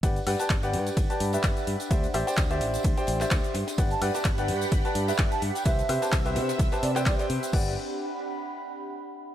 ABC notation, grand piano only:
X:1
M:4/4
L:1/16
Q:"Swing 16ths" 1/4=128
K:G
V:1 name="Grand piano"
[GBdf] z [GBdf] [GBda] z [GBdf]4 [GBda]2 [GBde]4- [GBde] | [Gcde] z [Gcde] [Gcdg] z [Gcde]4 [Gcdg]2 [Gcde]3 z2 | [GBdf] z [GBdf] [GBda] z [GBdf]4 [GBda]2 [GBde]4- [GBde] | [GBce] z [GBce] [GBca] z [GBce]4 [GBca]2 [GBcg]4- [GBcg] |
[GBdf]2 z12 z2 |]